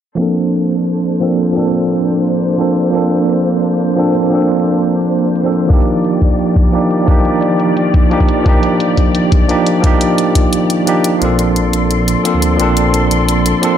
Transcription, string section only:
0.18 5.66 A#3 medium
0.18 5.66 D4 medium
0.18 2.91 A4 medium
0.18 5.66 C5 medium
5.70 11.18 D#3 medium
5.70 11.18 F3 medium
5.70 11.18 G4 medium
5.70 11.18 D5 medium
11.22 13.78 A4 medium
11.22 13.78 D5 medium
11.22 13.78 C6 medium

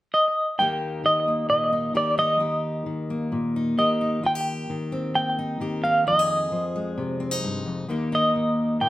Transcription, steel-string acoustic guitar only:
0.59 2.39 D#2 soft
0.59 1.03 D#3 soft
0.59 1.27 A#3 soft
0.59 1.72 D#4 soft
0.59 1.95 G4 soft
1.04 1.94 D#3 soft
1.28 2.39 A#3 soft
1.49 1.95 A#2 soft
1.72 2.17 D#4 soft
1.94 2.86 D#3 soft
1.94 2.40 G4 medium
2.18 3.56 D#4 soft
2.40 4.22 D#2 soft
2.40 3.77 G4 soft
2.86 3.77 D#3 soft
3.10 4.21 A#3 soft
3.32 3.78 A#2 soft
3.56 4.01 D#4 soft
3.78 4.69 D#3 soft
3.78 4.21 G4 medium
4.01 4.26 D#4 soft
4.23 5.13 D#2 soft
4.23 4.35 F4 soft
4.35 5.60 G4 soft
4.70 5.59 D#3 soft
4.92 6.04 C4 soft
5.15 6.06 D#2 soft
5.39 5.84 D#4 soft
5.60 6.51 D#3 soft
5.60 6.04 G4 medium
5.85 6.10 D#4 soft
6.07 7.43 F2 medium
6.07 6.19 F4 soft
6.19 7.90 G#4 soft
6.52 7.86 F3 soft
6.76 7.89 G#3 soft
6.98 7.86 C3 soft
7.20 7.31 C4 soft
7.31 7.89 D#4 soft
7.44 7.66 G2 soft
7.66 7.88 F2 medium
7.88 8.89 D#2 soft
7.88 8.35 D#3 soft
7.88 8.89 A#3 soft
7.88 8.12 D#4 soft
7.88 8.89 G4 soft
8.12 8.89 D#4 soft
8.35 8.89 D#3 soft
8.81 8.89 A#2 soft

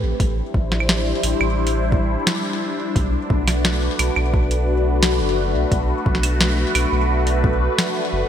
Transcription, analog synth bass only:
0.03 0.14 A1 loud
0.20 0.42 A1 medium
0.54 1.13 A1 medium
1.23 1.34 A1 medium
1.40 2.17 A1 medium
2.96 3.17 B1 medium
3.30 3.89 B1 medium
3.99 4.10 B1 medium
4.16 5.21 B1 medium
5.20 5.56 F#1 loud
5.54 5.65 B1 loud
5.72 5.93 B1 loud
6.06 6.65 B1 medium
6.75 6.86 B1 medium
6.92 7.68 B1 medium
8.13 8.24 F#1 loud

